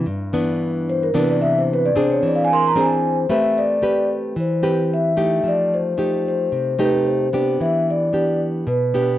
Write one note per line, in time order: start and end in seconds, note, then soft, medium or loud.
0.06 1.11 G2 medium
0.33 1.10 E3 medium
0.33 1.10 B3 medium
0.33 1.10 D4 medium
0.89 1.01 C5 medium
1.03 1.15 A#4 medium
1.14 2.19 C3 medium
1.14 1.90 E3 medium
1.14 1.91 B3 medium
1.14 1.91 D4 medium
1.18 1.29 B4 medium
1.31 1.42 D5 medium
1.42 1.54 E5 loud
1.59 1.70 C5 medium
1.73 1.84 B4 medium
1.85 1.96 D5 medium
1.96 2.71 C4 medium
1.96 2.72 D4 medium
1.96 2.72 G#4 medium
1.96 2.09 C5 medium
2.11 2.23 C#5 medium
2.23 3.27 E3 medium
2.28 2.33 D5 medium
2.36 2.42 F5 medium
2.45 2.51 G#5 loud
2.53 2.78 A#4 medium
2.53 2.64 C6 loud
2.67 2.78 A#5 medium
2.76 3.27 C4 medium
2.76 3.27 D4 medium
2.76 3.27 G#4 medium
2.76 3.32 C5 medium
2.81 3.16 G#5 medium
3.29 4.34 A3 medium
3.29 3.79 C4 soft
3.29 3.79 G4 soft
3.29 3.79 B4 medium
3.29 3.57 E5 medium
3.58 4.07 D5 medium
3.82 4.36 C4 soft
3.82 4.36 G4 soft
3.82 4.36 B4 medium
4.36 5.41 E3 medium
4.36 4.88 C5 medium
4.63 5.12 C4 medium
4.63 5.13 G4 medium
4.63 5.13 B4 medium
4.94 5.47 E5 medium
5.17 5.93 A3 medium
5.17 5.93 D#4 medium
5.17 5.94 G4 medium
5.43 6.48 F3 medium
5.48 5.73 D5 medium
5.74 6.27 C5 medium
5.97 6.74 A3 soft
5.97 6.74 D#4 soft
5.97 6.74 G4 soft
6.28 6.76 C5 medium
6.52 7.57 C3 medium
6.79 7.28 A3 medium
6.79 7.28 D#4 medium
6.79 7.28 G4 medium
6.79 7.04 B4 medium
7.07 7.56 C5 medium
7.33 8.09 B3 medium
7.33 8.09 D4 medium
7.33 8.09 G4 medium
7.60 8.64 E3 medium
7.60 7.85 E5 medium
7.90 8.38 D5 medium
8.13 8.66 B3 soft
8.13 8.66 D4 soft
8.13 8.67 G4 medium
8.67 9.19 B2 medium
8.67 9.18 B4 medium
8.94 9.19 B3 medium
8.94 9.19 D4 medium
8.94 9.19 G4 medium